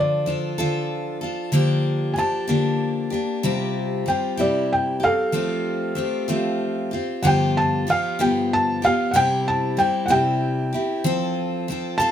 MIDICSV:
0, 0, Header, 1, 3, 480
1, 0, Start_track
1, 0, Key_signature, -1, "major"
1, 0, Tempo, 634249
1, 1161, Time_signature, 6, 3, 24, 8
1, 9169, End_track
2, 0, Start_track
2, 0, Title_t, "Felt piano"
2, 0, Program_c, 0, 0
2, 0, Note_on_c, 0, 74, 85
2, 202, Note_off_c, 0, 74, 0
2, 1616, Note_on_c, 0, 80, 62
2, 1644, Note_off_c, 0, 80, 0
2, 1654, Note_on_c, 0, 81, 79
2, 3056, Note_off_c, 0, 81, 0
2, 3090, Note_on_c, 0, 79, 69
2, 3317, Note_off_c, 0, 79, 0
2, 3335, Note_on_c, 0, 74, 72
2, 3560, Note_off_c, 0, 74, 0
2, 3577, Note_on_c, 0, 79, 73
2, 3801, Note_off_c, 0, 79, 0
2, 3810, Note_on_c, 0, 69, 71
2, 3813, Note_on_c, 0, 77, 83
2, 5215, Note_off_c, 0, 69, 0
2, 5216, Note_off_c, 0, 77, 0
2, 5468, Note_on_c, 0, 78, 67
2, 5493, Note_off_c, 0, 78, 0
2, 5500, Note_on_c, 0, 79, 89
2, 5723, Note_off_c, 0, 79, 0
2, 5731, Note_on_c, 0, 81, 87
2, 5959, Note_off_c, 0, 81, 0
2, 5980, Note_on_c, 0, 77, 78
2, 6203, Note_off_c, 0, 77, 0
2, 6213, Note_on_c, 0, 79, 74
2, 6440, Note_off_c, 0, 79, 0
2, 6458, Note_on_c, 0, 81, 88
2, 6683, Note_off_c, 0, 81, 0
2, 6696, Note_on_c, 0, 77, 87
2, 6896, Note_on_c, 0, 78, 65
2, 6921, Note_off_c, 0, 77, 0
2, 6924, Note_off_c, 0, 78, 0
2, 6932, Note_on_c, 0, 79, 99
2, 7159, Note_off_c, 0, 79, 0
2, 7173, Note_on_c, 0, 81, 80
2, 7400, Note_off_c, 0, 81, 0
2, 7405, Note_on_c, 0, 79, 88
2, 7611, Note_on_c, 0, 78, 65
2, 7635, Note_off_c, 0, 79, 0
2, 7640, Note_off_c, 0, 78, 0
2, 7647, Note_on_c, 0, 79, 94
2, 9056, Note_off_c, 0, 79, 0
2, 9064, Note_on_c, 0, 81, 98
2, 9169, Note_off_c, 0, 81, 0
2, 9169, End_track
3, 0, Start_track
3, 0, Title_t, "Steel-string acoustic guitar"
3, 0, Program_c, 1, 25
3, 0, Note_on_c, 1, 50, 69
3, 0, Note_on_c, 1, 53, 69
3, 0, Note_on_c, 1, 62, 70
3, 0, Note_on_c, 1, 65, 75
3, 0, Note_on_c, 1, 69, 70
3, 194, Note_off_c, 1, 53, 0
3, 198, Note_on_c, 1, 53, 52
3, 203, Note_off_c, 1, 62, 0
3, 206, Note_on_c, 1, 62, 54
3, 207, Note_off_c, 1, 69, 0
3, 211, Note_off_c, 1, 65, 0
3, 214, Note_on_c, 1, 65, 53
3, 225, Note_on_c, 1, 69, 48
3, 430, Note_off_c, 1, 69, 0
3, 438, Note_off_c, 1, 65, 0
3, 439, Note_off_c, 1, 53, 0
3, 439, Note_on_c, 1, 69, 72
3, 444, Note_off_c, 1, 62, 0
3, 447, Note_on_c, 1, 65, 71
3, 452, Note_on_c, 1, 62, 66
3, 455, Note_off_c, 1, 50, 0
3, 456, Note_on_c, 1, 53, 62
3, 458, Note_on_c, 1, 50, 61
3, 907, Note_off_c, 1, 69, 0
3, 916, Note_on_c, 1, 69, 55
3, 926, Note_off_c, 1, 62, 0
3, 928, Note_off_c, 1, 65, 0
3, 929, Note_off_c, 1, 50, 0
3, 931, Note_on_c, 1, 65, 48
3, 940, Note_on_c, 1, 62, 44
3, 1149, Note_on_c, 1, 50, 73
3, 1151, Note_off_c, 1, 53, 0
3, 1154, Note_on_c, 1, 53, 84
3, 1157, Note_off_c, 1, 62, 0
3, 1158, Note_off_c, 1, 69, 0
3, 1160, Note_on_c, 1, 58, 84
3, 1163, Note_off_c, 1, 65, 0
3, 1166, Note_on_c, 1, 62, 82
3, 1172, Note_on_c, 1, 67, 88
3, 1624, Note_off_c, 1, 53, 0
3, 1634, Note_off_c, 1, 50, 0
3, 1634, Note_on_c, 1, 53, 49
3, 1637, Note_off_c, 1, 58, 0
3, 1643, Note_off_c, 1, 62, 0
3, 1646, Note_on_c, 1, 58, 44
3, 1653, Note_on_c, 1, 62, 50
3, 1656, Note_off_c, 1, 67, 0
3, 1659, Note_on_c, 1, 67, 59
3, 1864, Note_off_c, 1, 67, 0
3, 1873, Note_off_c, 1, 62, 0
3, 1873, Note_on_c, 1, 67, 69
3, 1875, Note_off_c, 1, 58, 0
3, 1877, Note_off_c, 1, 53, 0
3, 1882, Note_on_c, 1, 62, 64
3, 1884, Note_on_c, 1, 58, 67
3, 1889, Note_on_c, 1, 53, 56
3, 1893, Note_on_c, 1, 50, 51
3, 2346, Note_off_c, 1, 67, 0
3, 2349, Note_on_c, 1, 67, 57
3, 2355, Note_off_c, 1, 62, 0
3, 2362, Note_off_c, 1, 58, 0
3, 2364, Note_off_c, 1, 53, 0
3, 2365, Note_on_c, 1, 62, 56
3, 2366, Note_off_c, 1, 50, 0
3, 2376, Note_on_c, 1, 58, 48
3, 2594, Note_off_c, 1, 67, 0
3, 2598, Note_on_c, 1, 48, 76
3, 2600, Note_on_c, 1, 55, 77
3, 2602, Note_off_c, 1, 58, 0
3, 2602, Note_off_c, 1, 62, 0
3, 2605, Note_on_c, 1, 60, 82
3, 2611, Note_on_c, 1, 65, 79
3, 2612, Note_on_c, 1, 67, 82
3, 3068, Note_off_c, 1, 55, 0
3, 3071, Note_on_c, 1, 55, 52
3, 3078, Note_off_c, 1, 48, 0
3, 3082, Note_off_c, 1, 60, 0
3, 3082, Note_off_c, 1, 65, 0
3, 3085, Note_on_c, 1, 60, 51
3, 3091, Note_on_c, 1, 65, 56
3, 3097, Note_off_c, 1, 67, 0
3, 3100, Note_on_c, 1, 67, 48
3, 3301, Note_off_c, 1, 67, 0
3, 3310, Note_on_c, 1, 67, 63
3, 3313, Note_off_c, 1, 60, 0
3, 3315, Note_off_c, 1, 55, 0
3, 3316, Note_off_c, 1, 65, 0
3, 3319, Note_on_c, 1, 64, 59
3, 3322, Note_on_c, 1, 60, 55
3, 3327, Note_on_c, 1, 55, 51
3, 3331, Note_on_c, 1, 48, 53
3, 3779, Note_off_c, 1, 67, 0
3, 3782, Note_on_c, 1, 67, 47
3, 3799, Note_off_c, 1, 60, 0
3, 3799, Note_off_c, 1, 64, 0
3, 3805, Note_off_c, 1, 48, 0
3, 3808, Note_on_c, 1, 60, 35
3, 4028, Note_on_c, 1, 53, 64
3, 4030, Note_off_c, 1, 67, 0
3, 4031, Note_off_c, 1, 55, 0
3, 4031, Note_off_c, 1, 60, 0
3, 4034, Note_on_c, 1, 57, 72
3, 4040, Note_on_c, 1, 60, 66
3, 4042, Note_on_c, 1, 65, 80
3, 4049, Note_on_c, 1, 67, 68
3, 4495, Note_off_c, 1, 57, 0
3, 4504, Note_on_c, 1, 57, 56
3, 4505, Note_off_c, 1, 60, 0
3, 4514, Note_on_c, 1, 60, 57
3, 4519, Note_off_c, 1, 65, 0
3, 4522, Note_on_c, 1, 65, 57
3, 4525, Note_off_c, 1, 67, 0
3, 4528, Note_on_c, 1, 67, 59
3, 4551, Note_off_c, 1, 53, 0
3, 4743, Note_off_c, 1, 67, 0
3, 4749, Note_off_c, 1, 65, 0
3, 4752, Note_off_c, 1, 57, 0
3, 4752, Note_on_c, 1, 67, 77
3, 4753, Note_off_c, 1, 60, 0
3, 4758, Note_on_c, 1, 65, 70
3, 4762, Note_on_c, 1, 60, 75
3, 4767, Note_on_c, 1, 57, 66
3, 4772, Note_on_c, 1, 53, 60
3, 5227, Note_off_c, 1, 67, 0
3, 5230, Note_on_c, 1, 67, 51
3, 5235, Note_off_c, 1, 65, 0
3, 5241, Note_off_c, 1, 60, 0
3, 5243, Note_off_c, 1, 57, 0
3, 5244, Note_on_c, 1, 65, 53
3, 5246, Note_off_c, 1, 53, 0
3, 5254, Note_on_c, 1, 60, 44
3, 5468, Note_on_c, 1, 43, 71
3, 5475, Note_off_c, 1, 65, 0
3, 5475, Note_off_c, 1, 67, 0
3, 5475, Note_on_c, 1, 50, 73
3, 5476, Note_off_c, 1, 60, 0
3, 5476, Note_on_c, 1, 53, 74
3, 5479, Note_on_c, 1, 59, 76
3, 5484, Note_on_c, 1, 65, 86
3, 5485, Note_on_c, 1, 67, 86
3, 5945, Note_off_c, 1, 53, 0
3, 5953, Note_off_c, 1, 59, 0
3, 5954, Note_off_c, 1, 43, 0
3, 5954, Note_on_c, 1, 53, 58
3, 5958, Note_off_c, 1, 50, 0
3, 5962, Note_off_c, 1, 65, 0
3, 5962, Note_on_c, 1, 59, 59
3, 5972, Note_on_c, 1, 65, 51
3, 5974, Note_off_c, 1, 67, 0
3, 5977, Note_on_c, 1, 67, 64
3, 6189, Note_off_c, 1, 67, 0
3, 6195, Note_off_c, 1, 65, 0
3, 6197, Note_off_c, 1, 53, 0
3, 6198, Note_on_c, 1, 67, 67
3, 6199, Note_off_c, 1, 59, 0
3, 6205, Note_on_c, 1, 65, 66
3, 6208, Note_on_c, 1, 59, 66
3, 6213, Note_on_c, 1, 53, 63
3, 6214, Note_on_c, 1, 50, 59
3, 6216, Note_on_c, 1, 43, 54
3, 6666, Note_off_c, 1, 67, 0
3, 6675, Note_on_c, 1, 67, 51
3, 6677, Note_off_c, 1, 65, 0
3, 6684, Note_off_c, 1, 59, 0
3, 6686, Note_on_c, 1, 65, 52
3, 6687, Note_off_c, 1, 53, 0
3, 6688, Note_off_c, 1, 50, 0
3, 6689, Note_off_c, 1, 43, 0
3, 6693, Note_on_c, 1, 59, 50
3, 6704, Note_on_c, 1, 53, 48
3, 6914, Note_off_c, 1, 53, 0
3, 6914, Note_on_c, 1, 48, 72
3, 6917, Note_on_c, 1, 55, 75
3, 6918, Note_off_c, 1, 67, 0
3, 6920, Note_off_c, 1, 59, 0
3, 6923, Note_on_c, 1, 60, 84
3, 6924, Note_off_c, 1, 65, 0
3, 6930, Note_on_c, 1, 64, 80
3, 6931, Note_on_c, 1, 67, 87
3, 7384, Note_off_c, 1, 55, 0
3, 7393, Note_on_c, 1, 55, 54
3, 7398, Note_off_c, 1, 48, 0
3, 7403, Note_off_c, 1, 60, 0
3, 7406, Note_off_c, 1, 64, 0
3, 7406, Note_off_c, 1, 67, 0
3, 7406, Note_on_c, 1, 60, 55
3, 7414, Note_on_c, 1, 64, 60
3, 7422, Note_on_c, 1, 67, 61
3, 7621, Note_off_c, 1, 67, 0
3, 7627, Note_off_c, 1, 64, 0
3, 7630, Note_off_c, 1, 60, 0
3, 7630, Note_on_c, 1, 67, 74
3, 7636, Note_on_c, 1, 64, 63
3, 7637, Note_off_c, 1, 55, 0
3, 7639, Note_on_c, 1, 60, 65
3, 7646, Note_on_c, 1, 55, 59
3, 7649, Note_on_c, 1, 48, 60
3, 8108, Note_off_c, 1, 67, 0
3, 8117, Note_on_c, 1, 67, 53
3, 8120, Note_off_c, 1, 64, 0
3, 8121, Note_off_c, 1, 60, 0
3, 8124, Note_off_c, 1, 55, 0
3, 8126, Note_off_c, 1, 48, 0
3, 8130, Note_on_c, 1, 64, 48
3, 8139, Note_on_c, 1, 60, 41
3, 8354, Note_off_c, 1, 60, 0
3, 8357, Note_on_c, 1, 53, 95
3, 8360, Note_off_c, 1, 67, 0
3, 8363, Note_on_c, 1, 60, 88
3, 8366, Note_off_c, 1, 64, 0
3, 8372, Note_on_c, 1, 65, 95
3, 8375, Note_on_c, 1, 69, 88
3, 8831, Note_off_c, 1, 53, 0
3, 8840, Note_on_c, 1, 53, 58
3, 8843, Note_off_c, 1, 60, 0
3, 8848, Note_off_c, 1, 65, 0
3, 8849, Note_off_c, 1, 69, 0
3, 8851, Note_on_c, 1, 60, 58
3, 8858, Note_on_c, 1, 65, 67
3, 8868, Note_on_c, 1, 69, 66
3, 9069, Note_off_c, 1, 69, 0
3, 9075, Note_off_c, 1, 65, 0
3, 9079, Note_on_c, 1, 69, 84
3, 9082, Note_off_c, 1, 53, 0
3, 9083, Note_off_c, 1, 60, 0
3, 9084, Note_on_c, 1, 65, 81
3, 9092, Note_on_c, 1, 60, 78
3, 9096, Note_on_c, 1, 53, 63
3, 9169, Note_off_c, 1, 53, 0
3, 9169, Note_off_c, 1, 60, 0
3, 9169, Note_off_c, 1, 65, 0
3, 9169, Note_off_c, 1, 69, 0
3, 9169, End_track
0, 0, End_of_file